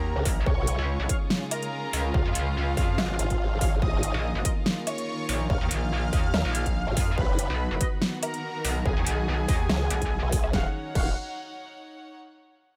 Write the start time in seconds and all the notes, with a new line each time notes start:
Already playing: D#2 D#3 C#4 D#4 F#4 A#4 C#5 F#5 A#5
0.16 C#2
0.25 A#1, kick, open hi-hat
0.46 C#2 C#3 G#3 C#4 F4 C#5 C#6, kick
0.58 B1
0.64 G#4, closed hi-hat
0.79 C#2
0.90 F5
1.00 B1
1.09 G#4 C#5 F5, kick, closed hi-hat
1.30 snare
1.51 A#4 A#5, closed hi-hat, low woodblock
1.63 closed hi-hat
1.93 C#2, open hi-hat
2.14 C#2 F4 F5, kick
2.26 F2
2.35 C#2, closed hi-hat
2.77 F2 G#4 C#5 F5, kick, open hi-hat
2.98 G#1, snare, low woodblock
3.19 G#1, closed hi-hat
3.30 kick, closed hi-hat
3.61 G#4 C#5 F5, kick, open hi-hat
3.82 A#1 D#3 A#3 D#4 F4 D#5 D#6, kick
3.93 G#1
4.03 A#4, closed hi-hat
4.14 A#1
4.35 G#1
4.45 F4 A#4 D#5, kick, closed hi-hat
4.66 snare
4.87 C#5 C#6, closed hi-hat, low woodblock
4.98 closed hi-hat
5.29 A#1, open hi-hat
5.50 A#1 F5 F6, kick
5.61 D#2
5.71 A#1, closed hi-hat
6.13 D#2 F4 A#4 D#5, kick, open hi-hat
6.34 D#2, snare, low woodblock
6.45 A#1
6.55 closed hi-hat
6.66 kick, closed hi-hat
6.87 G#1
6.97 F2, kick, open hi-hat
7.18 B1 D#3 B3 F#4 B4 B5, kick
7.29 F#1
7.38 B3, closed hi-hat
7.50 B1
7.71 F#1
7.81 F#4 B4 D#5, kick, closed hi-hat
8.02 F#5, snare
8.23 A#4 A#5, closed hi-hat, low woodblock
8.34 closed hi-hat
8.65 B1, open hi-hat
8.86 B1 G#4 G#5, kick
8.97 D#2
9.07 B1, closed hi-hat
9.48 D#2 F#4 B4 D#5, kick, open hi-hat
9.69 C#2, snare, low woodblock
9.90 B1, closed hi-hat
10.02 kick, closed hi-hat
10.23 B1
10.32 kick, open hi-hat
10.44 low woodblock
10.53 D#1 D#3 C#4 D#4 F#4 C#5 F5 F#5, kick, snare
10.60 C#5
10.67 F#5
10.95 D#1 F#4 C#5 F5 F#5, kick, crash